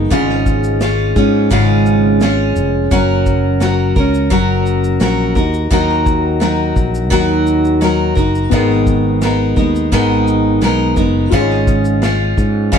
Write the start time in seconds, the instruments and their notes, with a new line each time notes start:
Already playing: steel-string acoustic guitar G#3 B3 D#4 A#4
0.10 fretless electric bass G#1, steel-string acoustic guitar G#2 C#3 G#3 C#4 F4 G#4, kick, shaker
0.29 snare
0.46 kick, shaker
0.64 shaker
0.81 steel-string acoustic guitar G#3 C#4 F4 G#4, snare, shaker
1.16 fretless electric bass G#2, steel-string acoustic guitar G#3 C#4 F4 G#4, kick, shaker
1.51 fretless electric bass G#1, steel-string acoustic guitar G#2 C#3 G#3 C#4 F4 G#4, kick, shaker
1.86 shaker
2.21 steel-string acoustic guitar G#3 C#4 F4 G#4, snare, shaker
2.56 fretless electric bass F1, shaker
2.91 fretless electric bass F#1, steel-string acoustic guitar F#3 C#4 F#4 A#4, kick, shaker
3.26 kick, shaker
3.60 steel-string acoustic guitar F#3 C#4 F#4 A#4, snare, shaker
3.96 fretless electric bass C#2, steel-string acoustic guitar C#4 F#4 A#4, kick, shaker
4.15 shaker
4.30 fretless electric bass F#1, steel-string acoustic guitar F#3 C#4 F#4 A#4, kick, shaker
4.66 shaker
4.84 shaker
5.00 fretless electric bass A#1, steel-string acoustic guitar F#3 C#4 F#4 A#4, snare, shaker
5.35 fretless electric bass D#2, steel-string acoustic guitar D#4 F#4 A#4, kick, shaker
5.54 shaker
5.70 fretless electric bass D#2, steel-string acoustic guitar D#3 F#3 D#4 F#4 A#4, kick, shaker
5.89 snare
6.06 kick, shaker
6.40 steel-string acoustic guitar F#3 D#4 F#4 A#4, snare, shaker
6.76 fretless electric bass A#1, kick, shaker
6.95 shaker
7.10 fretless electric bass D#2, steel-string acoustic guitar D#3 F#3 D#4 F#4 A#4, kick, shaker
7.47 shaker
7.65 shaker
7.81 steel-string acoustic guitar F#3 D#4 F#4 A#4, snare, shaker
8.15 fretless electric bass F#1, steel-string acoustic guitar D#4 F#4 A#4, kick, shaker
8.35 shaker
8.50 fretless electric bass G#1, steel-string acoustic guitar G#2 D#3 G#3 B3 D#4 A#4, felt piano B3 D#4 G#4 A#4 D#5, kick, shaker
8.70 snare
8.87 kick, shaker
9.22 steel-string acoustic guitar G#3 B3 D#4 A#4, snare, shaker
9.56 fretless electric bass D#2, steel-string acoustic guitar G#3 B3 D#4 A#4, kick, shaker
9.76 shaker
9.92 fretless electric bass G#1, steel-string acoustic guitar G#2 D#3 G#3 B3 D#4 A#4, kick, shaker
10.28 shaker
10.61 fretless electric bass B1, steel-string acoustic guitar G#3 B3 D#4 A#4, snare, shaker
10.96 fretless electric bass F#1, steel-string acoustic guitar G#3 B3 D#4 A#4, kick, shaker
11.30 fretless electric bass G#1, steel-string acoustic guitar G#2 C#3 G#3 C#4 F4 G#4, felt piano F4 G#4 C5, kick, shaker
11.40 felt piano C#5
11.50 snare
11.67 kick, shaker
11.85 shaker
12.02 steel-string acoustic guitar G#3 C#4 F4 G#4, snare, shaker
12.38 fretless electric bass G#2, kick, shaker
12.72 fretless electric bass G#1, steel-string acoustic guitar G#2 C#3 G#3 C#4 F4 G#4, kick, shaker